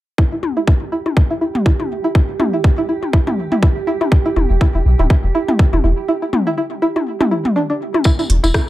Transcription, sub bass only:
4.36 E1
4.50 E1
4.75 E1
4.85 B1
4.99 D1
5.24 E1
5.73 E1
5.84 E1
8.30 E1
8.44 E1

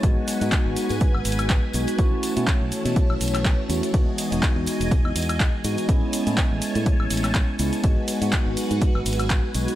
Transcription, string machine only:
0.04 F#4 B4 G#5
1.99 E3 C#5 A5
3.94 D#5 G#5
5.89 C#5 G#5 A5
7.84 F#4 B4 G#5

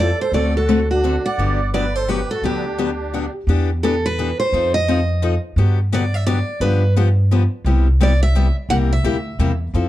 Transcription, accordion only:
0.00 A4
0.20 A4
0.34 A4
0.55 F#4
0.90 D4
1.25 D5
1.74 B4
1.95 A4
2.07 G4
2.29 F#4
2.44 D4

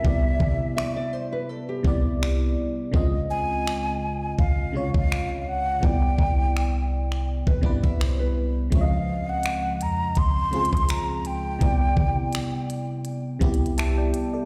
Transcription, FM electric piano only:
0.02 C3 G3 B3 E4
0.07 D5
1.83 C3 G3 B3 E4
1.87 D5
2.91 C#3 G#3 C4 F4
2.96 D#5
4.72 C3 C#3 G#3 F4
4.77 C#5
5.80 C3 G3 B3 E4
5.85 D5
7.61 C3 G3 B3 E4
7.66 B4
8.70 C#3 F3 G#3 C4
8.74 C#5
8.81 D#5
10.51 C#3 G#3 C4 F4
10.55 G#4
11.59 C3 G3 B3 E4
11.63 D5
13.39 C3 G3 B3 E4
13.44 G4
13.78 E5 A5
13.97 D5 G5
14.33 A4 D5

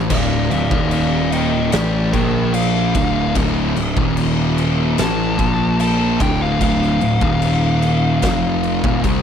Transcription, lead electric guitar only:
0.10 D5 F5
0.51 D5 F5
0.92 D5 F5
1.32 D#5 G5
1.73 D5 G5
2.13 A#4 G5
2.55 F5
5.00 A5
5.81 A5
6.22 G5
6.42 F5
6.63 F5

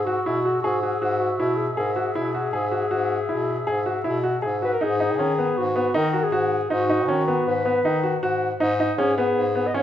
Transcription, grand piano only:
0.07 F#4
0.26 E4
0.45 F#4
0.64 G#4
0.83 F#4
1.02 F#4
1.40 E4
1.77 G#4
1.96 F#4
2.15 E4
2.34 F#4
2.53 G#4
2.72 F#4
2.91 F#4
3.29 E4
3.67 G#4
3.86 F#4
4.04 E4
4.23 F#4
4.42 G#4
4.62 F#4
4.81 D#4
5.00 D#4
5.19 C#4
5.38 B3
5.76 B3
5.94 D#4
6.13 F#4
6.32 F#4
6.70 D#4
6.89 D#4
7.08 C#4
7.28 B3
7.65 B3
7.85 D#4
8.03 F#4
8.23 F#4
8.60 D#4
8.80 D#4
8.98 C#4
9.18 B3
9.55 B3
9.74 C#4

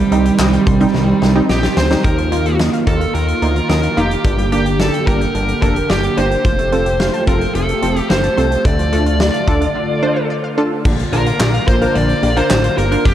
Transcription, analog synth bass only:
0.12 C2
0.39 C2
0.67 C2
0.94 C2
1.22 C2
1.49 A#1
1.77 D2
2.04 D#2
2.87 D#2
3.14 D#2
3.42 D2
3.70 D#2
3.97 F1
4.25 G1
5.07 G1
5.35 G1
5.62 F1
5.90 G1
6.17 G1
6.45 F1
7.27 F1
7.55 F1
7.82 F1
8.10 G1
8.38 C2
8.65 D2
9.48 D2
10.85 A#1
11.13 A#1
11.40 A#1
11.68 A#1
11.95 A#1
12.23 A#1
12.50 A1
12.78 G1
13.05 F1

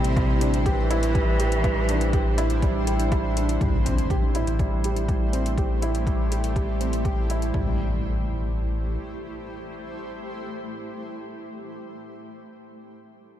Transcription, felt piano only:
Already playing: G3 G4
0.17 G3
0.41 D4
0.66 G4
0.90 E4
1.15 G3
1.39 G4
1.64 G3
1.89 D4
2.13 G4
2.38 E4
2.63 G3
2.87 G4
3.12 G3
3.36 D4
3.61 G3
3.86 C4
4.10 G4
4.35 E4
4.60 G3
4.84 G4
5.09 G3
5.33 C4
5.58 G4
5.82 E4
6.07 G3
6.31 G4
6.56 G3
6.81 C4
7.05 G4
7.30 E4
7.54 G3

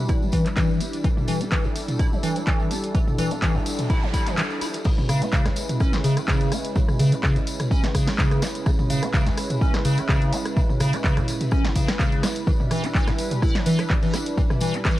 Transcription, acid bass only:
0.09 E4
0.22 E3
0.33 E3
0.46 G3
0.57 E3
0.80 E4
1.04 E3
1.28 E3
1.41 E4
1.52 E3
1.65 E2
1.99 E4
2.12 E3
2.23 E3
2.36 G3
2.47 E3
2.71 E4
2.95 E3
3.19 E3
3.31 E4
3.42 E3
3.55 E2
3.90 E4
4.03 E3
4.14 E4
4.27 E3
4.38 E3
4.62 E4
4.85 C#3
5.09 C#3
5.22 C#4
5.33 C#3
5.46 C#2
5.80 C#4
5.93 C#3
6.04 C#3
6.17 E3
6.28 C#3
6.52 C#4
6.76 C#3
7.00 C#3
7.12 C#4
7.23 C#3
7.36 C#2
7.71 C#4
7.84 C#3
7.95 C#3
8.07 E3
8.18 C#3
8.42 C#4
8.66 C#3
8.90 C#3
9.03 C#4
9.14 C#3
9.26 C#2
9.61 C#4
9.74 C#3
9.85 C#3
9.98 E3
10.09 C#3
10.33 C#4
10.57 C#3
10.80 C#3
10.93 C#4
11.04 C#3
11.17 C#2
11.52 C#4
11.65 C#3
11.76 C#3
11.88 E3
11.99 C#3
12.23 C#4
12.47 E3
12.71 E3
12.84 E4
12.95 E3
13.08 E2
13.42 E4
13.55 E3
13.66 E3
13.79 G3
13.90 E3
14.03 E3
14.14 E4
14.38 E3
14.61 E3
14.74 E4
14.85 E3

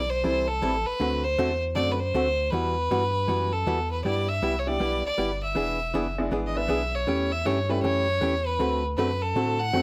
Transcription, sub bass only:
Already playing: B1
0.25 C2
0.63 A1
0.87 A1
1.00 D2
1.38 E2
1.76 F#2
2.14 D2
2.53 E2
2.91 G2
3.29 F#2
3.67 E2
4.05 G2
4.42 C2
4.80 B1
5.06 B1
5.18 G1
5.56 E1
5.94 F#1
6.32 G#1
6.69 B1
7.08 E2
7.46 G2
7.84 F#2
8.22 E2
8.60 D2
8.98 F#2
9.35 A2
9.73 F#2

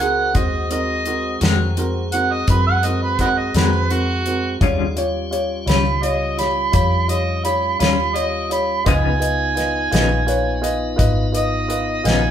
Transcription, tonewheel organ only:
Already playing: C4 F#4 A#4
0.37 G#3 C4 F#4
4.61 G#3 D4 F#4
4.97 G3 C#4 F4
8.86 B3 D#4 F4

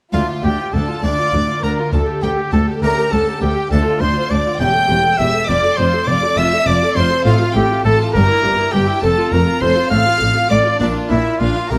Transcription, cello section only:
0.13 D2
0.43 D2
0.73 D2
1.03 D2
1.33 D2
1.63 D2
1.93 D2
2.23 D2
2.53 D2
2.82 D2
3.12 D2
3.41 D2
3.71 D2
4.01 D2
4.30 D2
4.60 E2
4.89 E2
5.19 E2
5.48 F2
5.78 F2
6.07 F2
6.37 F2
6.66 F2
6.96 F2
7.25 A2
7.55 A2
7.85 A2
8.15 G2
8.44 G2
8.74 G2
9.03 F2
9.33 F2
9.62 F2
9.91 A2
10.21 A2
10.51 A2
10.80 A#2
11.11 A#2
11.40 A#2
11.70 C3

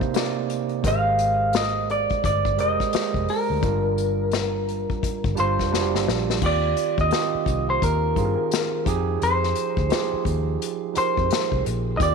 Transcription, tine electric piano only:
Already playing: C3 A#3 D#4 C5 D5
0.13 C3 A#3 D#4 D5
0.83 G#3 G4 A#4 C5 D#5
2.57 G#3 G4 A#4 C5 D5
2.92 G#3 G4 A#4 C5 D#5
3.62 G3 D4 F4 A#4
5.35 G3 D4 F4 C5
5.71 G3 D4 F4
5.75 F#4
5.81 G4
6.40 D#3 C4 F4 G4
7.10 D#3 C4 F4 G4
8.15 D#3 C4 F4 G#4
8.25 A#4
8.85 F3 D#4 G4 G#4
9.89 F3 D#4 G4 G#4
10.94 F3 D#4 G4 A#4
11.98 D#3 C4 F4 G4

